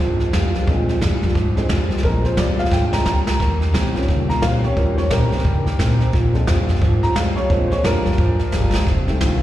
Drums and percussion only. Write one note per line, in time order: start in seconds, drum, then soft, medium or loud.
0.20 snare soft
0.33 kick medium
0.33 snare loud
0.33 hi-hat pedal medium
0.54 snare soft
0.68 kick loud
0.68 snare soft
0.89 snare soft
1.02 kick medium
1.02 snare loud
1.02 hi-hat pedal medium
1.23 snare soft
1.29 snare soft
1.35 kick loud
1.35 snare soft
1.57 snare soft
1.69 kick medium
1.69 snare loud
1.69 hi-hat pedal medium
1.91 snare soft
1.97 snare soft
2.03 kick loud
2.03 snare soft
2.25 snare soft
2.37 kick medium
2.37 snare loud
2.37 hi-hat pedal medium
2.59 snare soft
2.65 snare soft
2.71 kick loud
2.71 snare medium
2.93 snare medium
3.06 kick medium
3.06 snare medium
3.06 hi-hat pedal medium
3.27 snare medium
3.40 kick loud
3.40 snare soft
3.62 snare soft
3.74 kick medium
3.74 snare loud
3.74 hi-hat pedal medium
3.96 snare soft
4.02 snare soft
4.09 kick loud
4.09 snare soft
4.30 snare soft
4.42 kick medium
4.42 snare loud
4.42 hi-hat pedal medium
4.64 snare soft
4.77 kick loud
4.77 snare soft
4.98 snare soft
5.11 kick medium
5.11 snare loud
5.11 hi-hat pedal medium
5.32 snare soft
5.39 snare soft
5.45 kick loud
5.45 snare soft
5.66 snare soft
5.79 kick medium
5.79 snare loud
5.79 hi-hat pedal medium
6.01 snare soft
6.13 kick loud
6.13 snare soft
6.35 snare soft
6.47 kick medium
6.47 snare loud
6.47 hi-hat pedal medium
6.68 snare soft
6.76 snare soft
6.81 kick loud
6.81 snare soft
7.03 snare soft
7.16 kick medium
7.16 snare loud
7.16 hi-hat pedal medium
7.37 snare soft
7.50 kick loud
7.50 snare soft
7.71 snare soft
7.84 kick medium
7.84 snare loud
7.84 hi-hat pedal medium
8.05 snare soft
8.12 snare soft
8.18 kick loud
8.18 snare soft
8.39 snare soft
8.52 kick medium
8.52 snare medium
8.52 hi-hat pedal medium
8.74 snare medium
8.87 kick loud
8.87 snare soft
9.08 snare soft
9.21 kick medium
9.21 snare loud
9.21 hi-hat pedal medium